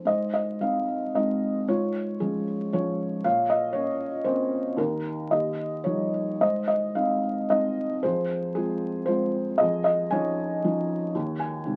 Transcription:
0.05 1.64 G#2 medium
0.05 0.85 C5 soft
0.05 0.32 D#5 medium
0.34 0.59 D#5 medium
0.60 1.13 G#3 soft
0.60 1.13 C4 soft
0.60 1.13 D#4 soft
0.60 1.17 F5 medium
1.14 1.66 G#3 soft
1.14 1.67 C4 soft
1.14 1.67 D#4 soft
1.14 1.70 D#5 medium
1.68 3.21 G#2 medium
1.68 2.44 F4 medium
1.68 2.18 C#5 medium
2.20 2.72 F3 soft
2.20 2.72 G#3 soft
2.20 2.72 C#4 soft
2.20 2.69 G#4 medium
2.73 3.23 F3 soft
2.73 3.24 G#3 soft
2.73 3.24 C#4 medium
2.73 3.24 C#5 medium
3.24 4.74 A#2 medium
3.24 3.71 C#5 medium
3.24 3.51 F5 medium
3.50 3.73 D#5 medium
3.73 4.24 A#3 soft
3.73 4.25 C#4 soft
3.73 4.26 C#5 medium
4.24 4.76 A#3 soft
4.24 4.76 C4 soft
4.24 4.77 C#4 soft
4.24 4.74 C5 medium
4.77 5.29 D#2 medium
4.77 5.29 D#4 medium
4.77 5.28 A#4 medium
5.31 6.38 D#2 medium
5.31 6.10 G4 medium
5.31 5.82 D#5 medium
5.84 6.40 F3 soft
5.84 6.40 G3 soft
5.84 6.40 D#4 soft
5.84 6.36 C#5 medium
6.41 8.00 G#2 medium
6.41 7.20 C5 medium
6.41 6.66 D#5 medium
6.68 6.97 D#5 medium
6.95 7.48 G#3 soft
6.95 7.49 C4 soft
6.95 7.49 D#4 soft
6.95 7.46 F5 medium
7.50 8.02 G#3 soft
7.50 8.02 C4 soft
7.50 8.03 D#4 soft
7.50 8.05 D#5 medium
8.03 9.57 F2 medium
8.03 8.53 G#4 medium
8.03 8.57 C5 medium
8.55 9.06 G#3 soft
8.55 9.06 C4 soft
8.55 9.06 F4 soft
8.55 9.04 G#4 medium
9.06 9.58 G#3 soft
9.06 9.59 C4 soft
9.06 9.59 F4 soft
9.06 9.61 C5 medium
9.58 11.11 F2 medium
9.58 10.35 G#4 medium
9.58 9.83 D#5 medium
9.84 10.12 D#5 medium
10.11 10.62 F3 soft
10.11 10.62 C#4 soft
10.11 10.63 D#4 soft
10.11 11.76 C#5 medium
10.11 11.38 G#5 medium
10.64 11.14 F3 medium
10.64 11.14 C#4 soft
10.64 11.14 D#4 medium
11.15 11.76 D#2 medium
11.40 11.76 G#5 medium
11.65 11.76 C3 soft
11.65 11.76 G#3 soft
11.65 11.76 D#4 soft

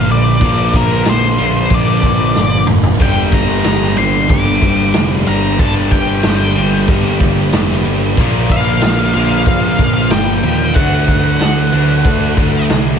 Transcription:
0.00 0.39 A#2 medium
0.00 0.39 A#2 loud
0.00 0.40 D3 medium
0.00 0.40 F3 medium
0.00 0.43 A#3 medium
0.00 0.43 D4 loud
0.00 0.11 F5 loud
0.09 0.40 A#1 medium
0.09 0.77 D5 medium
0.09 crash soft
0.40 1.02 A#1 loud
0.40 1.36 A#2 medium
0.40 2.98 D3 loud
0.40 1.37 F3 medium
0.40 1.37 A#3 loud
0.40 3.02 D4 loud
0.40 kick loud
0.40 crash medium
0.74 1.09 A#4 medium
0.74 kick medium
0.74 crash medium
1.05 1.37 A#1 medium
1.05 snare loud
1.05 crash medium
1.10 1.75 C5 medium
1.23 snare soft
1.38 1.69 A#1 medium
1.38 3.00 A#2 medium
1.38 2.99 F3 medium
1.38 4.88 A#3 medium
1.38 crash medium
1.70 2.01 A#1 loud
1.70 kick loud
1.70 crash medium
1.74 2.66 D5 medium
2.03 2.34 A#1 medium
2.03 kick medium
2.03 crash medium
2.36 2.67 G1 medium
2.36 snare medium
2.67 2.99 F1 medium
2.67 mid tom medium
2.83 floor tom medium
3.00 3.61 G1 medium
3.00 4.00 G2 medium
3.00 3.96 D3 loud
3.00 3.97 G3 medium
3.00 5.61 A#3 loud
3.00 10.74 A#3 medium
3.00 5.61 D4 loud
3.00 3.34 G5 medium
3.00 kick loud
3.00 crash medium
3.04 8.16 G4 medium
3.04 12.99 D5 medium
3.32 3.64 A#5 medium
3.32 kick medium
3.32 crash medium
3.64 3.96 G1 medium
3.64 3.97 A#5 medium
3.64 snare loud
3.64 crash medium
3.81 snare soft
3.96 4.28 G1 medium
3.96 5.58 D3 medium
3.96 5.57 G3 medium
3.96 4.30 C6 medium
3.96 crash soft
4.01 5.58 G2 medium
4.29 4.60 G1 medium
4.29 5.28 D6 medium
4.29 kick loud
4.29 crash medium
4.62 4.93 G1 medium
4.62 kick medium
4.62 crash medium
4.94 5.26 F1 medium
4.94 snare loud
4.94 crash medium
5.27 5.58 G1 medium
5.27 5.58 A#5 medium
5.27 crash medium
5.59 6.21 G1 medium
5.59 6.54 G2 medium
5.59 6.55 D3 medium
5.59 6.55 G3 loud
5.59 8.17 A#3 loud
5.59 8.20 D4 loud
5.59 5.92 A5 medium
5.59 kick loud
5.59 crash medium
5.91 6.85 G5 medium
5.91 kick medium
5.91 crash medium
6.23 6.55 G1 medium
6.23 snare loud
6.23 crash medium
6.56 6.87 G1 medium
6.56 8.18 G2 medium
6.56 8.17 D3 medium
6.56 8.16 G3 medium
6.56 crash medium
6.88 7.19 G1 medium
6.88 kick loud
6.88 crash medium
7.20 7.51 G1 medium
7.20 kick medium
7.20 crash medium
7.53 7.84 F1 medium
7.53 snare loud
7.53 crash medium
7.85 8.16 G1 medium
7.85 crash medium
8.17 8.79 A#1 loud
8.17 9.13 A#2 medium
8.17 10.73 D3 loud
8.17 9.13 F3 medium
8.17 9.12 A#3 loud
8.17 10.78 D4 loud
8.17 10.75 F4 medium
8.17 kick loud
8.17 crash medium
8.49 9.13 F5 loud
8.49 kick medium
8.49 crash medium
8.82 9.13 A#1 medium
8.82 snare loud
8.82 crash medium
9.13 9.45 A#1 medium
9.13 10.75 A#2 medium
9.13 10.75 F3 medium
9.13 10.74 A#3 medium
9.13 9.93 F5 medium
9.13 crash medium
9.46 9.77 A#1 loud
9.46 kick loud
9.46 crash medium
9.79 10.10 A#1 medium
9.79 kick medium
9.79 crash medium
9.94 10.10 F5 loud
10.11 10.42 G1 medium
10.11 10.75 G5 loud
10.11 snare loud
10.11 crash medium
10.43 10.74 D#2 medium
10.43 crash medium
10.75 11.37 D2 loud
10.75 11.71 D3 medium
10.75 12.99 F#3 medium
10.75 12.99 A3 medium
10.75 11.72 A3 medium
10.75 11.71 D4 loud
10.75 12.99 F#4 medium
10.75 12.66 F#5 loud
10.75 kick loud
10.75 crash medium
11.08 kick medium
11.08 crash medium
11.40 11.71 D2 medium
11.40 snare loud
11.40 crash medium
11.72 12.03 D2 medium
11.72 12.99 D3 medium
11.72 12.99 A3 medium
11.72 12.99 D4 medium
11.72 crash medium
12.04 12.36 D2 loud
12.04 kick loud
12.04 crash medium
12.37 12.68 D2 medium
12.37 kick medium
12.37 crash medium
12.70 12.99 C2 medium
12.70 snare loud
12.70 crash medium

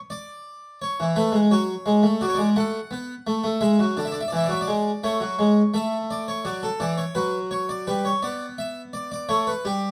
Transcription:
0.10 0.79 D5 medium
0.82 1.03 C#5 medium
1.00 1.16 E3 medium
1.16 1.33 A3 medium
1.16 1.38 B4 medium
1.32 1.50 G#3 medium
1.51 1.73 F#3 medium
1.51 2.19 C#5 medium
1.86 2.03 G#3 medium
2.03 2.21 A3 medium
2.21 2.38 F#3 medium
2.21 2.26 D5 medium
2.28 2.35 C#5 medium
2.35 2.55 G#3 medium
2.35 2.48 D5 medium
2.56 2.78 A3 medium
2.56 3.59 F#5 medium
2.91 3.13 B3 medium
3.27 3.43 A3 medium
3.44 3.61 A3 medium
3.61 3.78 G#3 medium
3.61 3.83 E5 medium
3.79 3.96 F#3 medium
3.97 4.19 D3 medium
3.97 4.05 D5 medium
4.05 4.13 E5 medium
4.12 4.21 D5 medium
4.20 4.29 E5 medium
4.28 4.37 D5 soft
4.32 4.50 E3 medium
4.37 4.45 E5 medium
4.44 4.52 D5 medium
4.48 4.67 F#3 medium
4.53 4.61 E5 medium
4.61 5.02 D5 medium
4.68 4.90 G#3 medium
5.04 5.21 A3 medium
5.04 5.72 C#5 medium
5.20 5.38 F#3 medium
5.39 5.61 G#3 medium
5.74 6.43 A3 medium
5.74 5.96 E5 medium
6.11 6.27 D5 medium
6.28 6.45 C#5 medium
6.45 6.67 F#3 medium
6.45 6.62 D5 medium
6.63 6.80 A4 medium
6.80 7.02 E3 medium
6.80 6.98 D5 medium
6.98 7.15 C#5 medium
7.15 7.85 F#3 medium
7.15 7.37 B4 medium
7.51 7.69 C#5 medium
7.69 7.87 D5 medium
7.87 8.09 G3 medium
7.87 8.05 B4 medium
8.05 8.22 C#5 medium
8.22 9.26 B3 medium
8.22 8.45 D5 medium
8.58 8.80 E5 medium
8.93 9.10 D5 medium
9.12 9.29 D5 medium
9.29 9.51 A3 medium
9.29 9.47 C#5 medium
9.47 9.65 B4 medium
9.65 9.91 G3 medium
9.65 9.87 G4 medium

